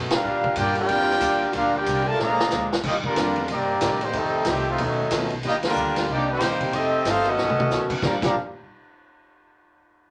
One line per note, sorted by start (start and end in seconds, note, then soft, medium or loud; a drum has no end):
0.00 0.11 F#2 loud
0.00 0.13 B2 medium
0.00 0.24 C#3 medium
0.00 0.13 A3 medium
0.00 0.24 A3 medium
0.00 0.24 B3 medium
0.00 0.14 C#4 medium
0.00 0.14 D#4 medium
0.00 0.23 D#4 medium
0.10 0.54 G3 medium
0.10 0.54 D4 medium
0.10 0.54 F4 medium
0.10 0.55 G4 medium
0.10 0.55 A#4 medium
0.10 0.55 F5 medium
0.10 muted upright bass stroke soft
0.10 snare loud
0.10 ride medium
0.23 0.56 A#2 medium
0.23 0.46 A#2 soft
0.23 2.15 D3 medium
0.23 2.17 G3 medium
0.23 0.46 G3 medium
0.23 2.81 A#3 medium
0.23 0.47 D4 medium
0.23 2.17 F4 medium
0.23 0.47 F4 medium
0.44 kick medium
0.56 0.88 G2 loud
0.56 0.78 A#2 medium
0.56 0.77 G3 medium
0.56 0.78 G3 medium
0.56 0.78 D4 medium
0.56 0.77 D4 medium
0.56 0.77 F4 medium
0.56 0.79 F4 medium
0.56 0.77 G4 medium
0.56 0.77 A#4 medium
0.56 0.78 D5 medium
0.56 0.77 G5 loud
0.56 kick soft
0.56 hi-hat pedal medium
0.56 ride medium
0.75 1.51 G3 medium
0.75 1.51 D4 medium
0.75 1.51 F4 loud
0.75 1.51 G4 loud
0.75 1.51 A#4 loud
0.75 1.51 D5 loud
0.75 1.51 G5 loud
0.75 ride medium
0.89 1.20 F2 loud
0.89 1.10 A#2 medium
0.89 1.11 G3 medium
0.89 1.11 D4 medium
0.89 1.11 F4 medium
0.89 kick soft
0.89 ride medium
1.00 snare soft
1.11 snare medium
1.20 1.53 D#2 medium
1.20 1.42 A#2 medium
1.20 1.43 G3 medium
1.20 1.43 D4 medium
1.20 1.43 F4 medium
1.20 kick soft
1.20 hi-hat pedal medium
1.20 ride medium
1.53 1.85 D2 medium
1.53 1.75 A#2 medium
1.53 1.74 G3 medium
1.53 1.75 G3 medium
1.53 1.74 D4 medium
1.53 1.76 D4 medium
1.53 1.75 D4 medium
1.53 1.74 F4 medium
1.53 1.76 F4 medium
1.53 1.75 G4 medium
1.53 1.75 A#4 medium
1.53 1.75 F5 loud
1.53 kick soft
1.53 ride medium
1.76 2.07 G3 medium
1.76 2.07 D4 medium
1.76 2.07 F4 medium
1.76 2.08 G4 medium
1.76 2.07 A#4 medium
1.76 2.07 D5 medium
1.76 2.08 G5 loud
1.86 2.18 C2 loud
1.86 2.08 A#2 medium
1.86 2.08 G3 medium
1.86 2.08 D4 medium
1.86 2.08 F4 medium
1.86 kick soft
1.86 hi-hat pedal medium
1.86 ride medium
2.07 2.19 A3 medium
2.07 2.20 F4 medium
2.07 2.20 A#4 loud
2.07 2.20 D5 medium
2.07 2.20 A5 loud
2.17 2.50 A#1 medium
2.17 2.40 A#2 soft
2.17 2.82 D3 medium
2.17 2.82 G#3 medium
2.17 2.41 G#3 medium
2.17 2.41 D4 soft
2.17 2.83 F4 medium
2.17 snare medium
2.21 2.69 D3 medium
2.21 2.69 F3 loud
2.21 2.69 A#3 loud
2.21 2.41 F4 soft
2.21 2.69 G#4 medium
2.21 2.69 D5 medium
2.21 2.69 F5 medium
2.21 2.69 A#5 loud
2.40 snare medium
2.50 2.83 D2 medium
2.50 2.73 A#2 medium
2.50 2.73 G#3 medium
2.50 2.73 D4 medium
2.50 2.73 F4 medium
2.50 snare medium
2.50 hi-hat pedal medium
2.73 snare loud
2.84 3.15 D#2 medium
2.84 3.05 D#3 soft
2.84 3.06 G3 soft
2.84 2.94 G3 medium
2.84 2.94 A#3 medium
2.84 2.95 A#3 medium
2.84 3.06 D4 soft
2.84 2.95 D#4 medium
2.84 2.95 F4 medium
2.84 3.06 F4 medium
2.84 2.95 G4 medium
2.84 kick medium
2.84 snare soft
2.84 crash medium
2.88 2.96 D#5 medium
3.04 3.47 D3 medium
3.04 3.46 G3 medium
3.04 3.47 G3 medium
3.04 3.46 A#3 medium
3.04 3.47 D4 medium
3.04 3.47 F4 medium
3.04 3.47 A#4 medium
3.04 kick medium
3.15 3.48 F2 loud
3.15 3.33 D#3 medium
3.15 3.37 D#3 medium
3.15 3.34 G3 medium
3.15 3.38 G3 medium
3.15 3.34 A#3 medium
3.15 3.34 D4 medium
3.15 3.38 D4 medium
3.15 3.34 F4 medium
3.15 3.38 F4 medium
3.15 kick soft
3.15 snare medium
3.15 hi-hat pedal medium
3.15 ride medium
3.36 ride medium
3.48 3.80 G2 medium
3.48 3.70 C3 soft
3.48 4.00 G3 loud
3.48 3.71 G3 soft
3.48 4.01 A#3 medium
3.48 3.71 A#3 medium
3.48 4.00 D4 medium
3.48 3.71 D#4 soft
3.48 4.02 G4 medium
3.48 kick soft
3.48 ride medium
3.52 4.03 C4 medium
3.52 4.02 A#4 medium
3.52 4.02 D5 medium
3.81 4.13 A2 loud
3.81 4.03 C3 medium
3.81 3.99 D#3 medium
3.81 3.99 G3 medium
3.81 4.03 G3 medium
3.81 4.00 A#3 medium
3.81 4.03 A#3 medium
3.81 4.00 C4 medium
3.81 4.04 D#4 medium
3.81 4.00 G4 medium
3.81 kick soft
3.81 snare medium
3.81 hi-hat pedal medium
3.81 ride medium
4.01 4.11 D#3 medium
4.01 4.13 G3 medium
4.01 4.15 A#3 medium
4.01 4.13 C4 medium
4.01 4.15 D#4 medium
4.01 4.15 G4 medium
4.01 4.15 C5 medium
4.01 ride medium
4.12 4.45 F2 medium
4.12 4.45 C3 medium
4.12 4.45 D#3 medium
4.12 4.35 F3 soft
4.12 4.45 A3 medium
4.12 4.35 A3 soft
4.12 4.36 D#4 medium
4.12 kick soft
4.12 ride medium
4.16 4.48 G3 medium
4.16 4.48 C4 medium
4.16 4.48 D#4 medium
4.16 4.36 G4 soft
4.16 4.48 A4 medium
4.45 4.77 C2 loud
4.45 4.66 C3 medium
4.45 4.63 D#3 medium
4.45 4.66 D#3 medium
4.45 4.68 F3 medium
4.45 4.64 G3 medium
4.45 4.66 G3 medium
4.45 4.64 A3 medium
4.45 4.68 A3 medium
4.45 4.64 C4 medium
4.45 4.68 D#4 medium
4.45 4.64 F4 medium
4.45 4.68 G4 medium
4.45 kick soft
4.45 snare medium
4.45 hi-hat pedal medium
4.45 ride medium
4.49 4.68 A3 medium
4.49 4.67 C4 medium
4.49 4.68 G4 loud
4.66 4.78 A2 medium
4.66 4.78 C3 medium
4.66 4.78 F3 medium
4.66 4.79 A3 medium
4.66 4.80 C4 medium
4.66 4.80 D#4 medium
4.66 4.80 F4 medium
4.78 5.10 D#2 loud
4.78 5.32 F#2 medium
4.78 5.32 A2 medium
4.78 5.00 B2 soft
4.78 5.32 D#3 medium
4.78 5.32 F#3 medium
4.78 5.00 A3 soft
4.78 5.33 A3 medium
4.78 5.01 C#4 medium
4.78 5.32 C#4 medium
4.78 5.01 D#4 medium
4.78 kick soft
4.78 ride medium
4.82 5.33 D#4 medium
5.11 5.21 F2 medium
5.11 5.32 B2 medium
5.11 5.29 D#3 medium
5.11 5.29 A3 medium
5.11 5.33 A3 medium
5.11 5.29 B3 medium
5.11 5.29 C#4 medium
5.11 5.33 C#4 medium
5.11 5.33 D#4 medium
5.11 5.30 F4 medium
5.11 kick soft
5.11 snare medium
5.11 hi-hat pedal medium
5.11 ride medium
5.21 5.32 D#2 medium
5.30 5.42 B1 medium
5.30 ride medium
5.43 5.75 D#2 medium
5.43 5.64 D#3 medium
5.43 5.65 G3 soft
5.43 5.54 G3 loud
5.43 5.54 A#3 medium
5.43 5.65 D4 medium
5.43 5.53 D#4 medium
5.43 5.65 F4 medium
5.43 5.55 F4 medium
5.43 5.55 G4 medium
5.43 kick soft
5.43 ride medium
5.48 5.56 A#3 medium
5.48 5.56 D#5 loud
5.63 6.07 G3 medium
5.63 6.07 F4 medium
5.63 snare medium
5.63 ride medium
5.67 6.07 D3 medium
5.67 6.07 G3 medium
5.67 6.07 A#3 medium
5.67 6.07 D4 medium
5.67 6.07 A#4 loud
5.75 6.07 D2 loud
5.75 5.97 D#3 medium
5.75 5.97 G3 medium
5.75 5.97 D4 medium
5.75 5.97 F4 medium
5.75 hi-hat pedal medium
5.96 snare medium
5.96 ride medium
6.08 6.40 C2 medium
6.08 6.29 C3 medium
6.08 6.29 G3 medium
6.08 6.30 A#3 medium
6.08 6.28 A#3 medium
6.08 6.28 D4 medium
6.08 6.30 D#4 medium
6.08 6.29 G4 medium
6.08 6.29 D5 loud
6.08 kick soft
6.12 6.29 D#4 medium
6.30 6.71 D#3 medium
6.30 6.71 G3 medium
6.30 6.72 A#3 medium
6.30 6.71 C4 medium
6.30 6.72 D#4 medium
6.30 6.72 G4 loud
6.30 6.71 C5 loud
6.40 6.72 A#1 medium
6.40 6.62 C3 medium
6.40 6.58 D#3 medium
6.40 6.62 G3 medium
6.40 6.59 G3 medium
6.40 6.59 A#3 medium
6.40 6.62 A#3 medium
6.40 6.59 C4 medium
6.40 6.62 D#4 medium
6.40 6.59 G4 medium
6.40 kick soft
6.40 snare medium
6.40 hi-hat pedal medium
6.40 ride medium
6.61 kick medium
6.61 ride medium
6.73 7.04 F1 medium
6.73 6.94 F3 medium
6.73 6.94 A3 soft
6.73 7.05 A3 medium
6.73 7.05 C4 medium
6.73 7.06 C4 loud
6.73 6.94 D#4 soft
6.73 7.06 D#4 medium
6.73 6.95 G4 medium
6.73 7.06 G4 loud
6.73 7.06 A4 medium
6.73 7.06 D#5 loud
6.73 kick soft
6.73 ride medium
7.05 7.37 G1 loud
7.05 7.26 F3 medium
7.05 7.27 A3 medium
7.05 7.26 A3 medium
7.05 7.26 C4 medium
7.05 7.27 D#4 medium
7.05 7.27 D#4 loud
7.05 7.25 F4 medium
7.05 7.27 G4 medium
7.05 7.27 A4 loud
7.05 kick soft
7.05 snare medium
7.05 hi-hat pedal medium
7.05 ride medium
7.09 7.27 C5 medium
7.09 7.27 F5 loud
7.24 7.36 D#3 medium
7.24 7.91 F#3 medium
7.24 7.36 A3 medium
7.24 7.91 A3 medium
7.24 7.36 B3 medium
7.24 7.36 C#4 medium
7.24 7.91 D#4 medium
7.24 7.37 F#4 medium
7.24 ride soft
7.29 7.92 C#4 medium
7.29 7.92 F#4 loud
7.29 7.92 A4 medium
7.29 7.92 D#5 loud
7.38 7.56 B1 loud
7.38 7.59 B2 soft
7.38 7.59 D#3 soft
7.38 7.60 A3 medium
7.38 7.60 C#4 medium
7.38 snare medium
7.50 mid tom medium
7.57 8.00 D#3 medium
7.57 8.00 A3 medium
7.57 8.00 B3 medium
7.57 8.01 C#4 medium
7.57 8.01 F#4 medium
7.57 muted upright bass stroke soft
7.57 mid tom loud
7.70 7.88 D#2 medium
7.70 7.92 B2 medium
7.70 7.92 D#3 medium
7.70 7.92 A3 medium
7.70 7.92 C#4 medium
7.70 snare medium
7.70 hi-hat pedal medium
7.90 muted upright bass stroke soft
7.90 kick medium
7.90 crash medium
8.02 8.13 A#1 loud
8.02 8.15 A#2 medium
8.02 8.15 F3 medium
8.02 8.15 G3 medium
8.02 8.16 G3 medium
8.02 8.15 G3 medium
8.02 8.15 A#3 medium
8.02 8.15 D4 medium
8.02 8.16 D4 medium
8.02 8.16 F4 medium
8.02 8.15 G4 medium
8.02 8.15 D5 medium
8.02 8.16 A#5 medium
8.02 kick loud
8.02 snare medium
8.07 8.16 F5 medium
8.22 8.34 A#1 loud
8.22 8.34 A#2 loud
8.22 8.33 A#2 medium
8.22 8.34 F3 medium
8.22 8.34 G3 medium
8.22 8.33 G3 medium
8.22 8.34 A#3 medium
8.22 8.34 D4 loud
8.22 8.34 D4 medium
8.22 8.34 F4 medium
8.22 8.34 G4 medium
8.22 8.36 D5 medium
8.22 kick loud
8.22 snare medium
8.22 crash medium
8.27 8.36 G4 medium
8.27 8.37 F5 medium
8.27 8.36 A#5 medium